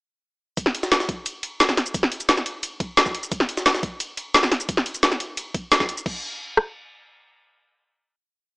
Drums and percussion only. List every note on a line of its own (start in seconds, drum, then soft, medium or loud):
0.57 kick loud
0.57 closed hi-hat loud
0.57 ride medium
0.57 shaker soft
0.66 snare medium
0.75 closed hi-hat medium
0.75 ride medium
0.83 snare medium
0.83 shaker medium
0.92 snare loud
0.92 closed hi-hat loud
0.92 ride medium
0.92 shaker medium
1.00 snare medium
1.00 shaker soft
1.09 kick loud
1.09 closed hi-hat medium
1.09 ride medium
1.26 closed hi-hat loud
1.26 ride medium
1.26 shaker medium
1.43 closed hi-hat medium
1.43 ride medium
1.60 snare loud
1.60 closed hi-hat loud
1.60 ride medium
1.60 shaker soft
1.69 snare soft
1.69 shaker soft
1.77 snare medium
1.77 closed hi-hat medium
1.77 ride medium
1.86 shaker medium
1.94 kick loud
1.94 closed hi-hat medium
1.94 ride medium
1.94 shaker soft
2.03 snare medium
2.12 closed hi-hat medium
2.12 ride medium
2.20 ride soft
2.20 shaker medium
2.29 snare loud
2.29 closed hi-hat loud
2.29 ride medium
2.29 shaker soft
2.37 snare soft
2.37 shaker soft
2.46 closed hi-hat medium
2.46 ride medium
2.63 closed hi-hat loud
2.63 ride medium
2.63 shaker soft
2.80 kick loud
2.80 closed hi-hat medium
2.80 ride medium
2.97 snare loud
2.97 closed hi-hat loud
2.97 ride medium
2.97 shaker soft
3.06 kick medium
3.06 snare soft
3.06 shaker soft
3.15 closed hi-hat medium
3.15 ride medium
3.23 shaker medium
3.32 kick loud
3.32 closed hi-hat medium
3.32 ride medium
3.32 shaker soft
3.40 snare medium
3.49 closed hi-hat medium
3.49 ride medium
3.57 snare medium
3.57 shaker medium
3.66 snare loud
3.66 closed hi-hat loud
3.66 ride medium
3.66 shaker soft
3.74 snare medium
3.74 shaker soft
3.83 kick loud
3.83 closed hi-hat medium
3.83 ride medium
4.00 closed hi-hat medium
4.00 ride loud
4.00 shaker soft
4.17 closed hi-hat medium
4.17 ride medium
4.34 snare loud
4.34 closed hi-hat medium
4.34 ride medium
4.34 shaker soft
4.43 snare medium
4.43 snare soft
4.43 shaker soft
4.52 snare soft
4.52 closed hi-hat medium
4.52 ride medium
4.60 shaker medium
4.69 kick loud
4.69 closed hi-hat medium
4.69 ride medium
4.69 shaker soft
4.77 snare medium
4.86 closed hi-hat medium
4.86 ride medium
4.94 ride soft
4.94 shaker medium
5.03 snare loud
5.03 closed hi-hat medium
5.03 ride medium
5.03 shaker soft
5.12 snare soft
5.12 shaker soft
5.20 closed hi-hat medium
5.20 ride medium
5.37 closed hi-hat medium
5.37 ride medium
5.37 shaker soft
5.54 kick loud
5.54 closed hi-hat medium
5.54 ride medium
5.72 snare loud
5.72 closed hi-hat medium
5.72 ride medium
5.72 shaker medium
5.80 kick medium
5.80 snare soft
5.80 shaker soft
5.89 closed hi-hat medium
5.89 ride medium
5.89 shaker soft
5.97 shaker medium
6.06 kick loud
6.06 crash medium
6.57 cross-stick medium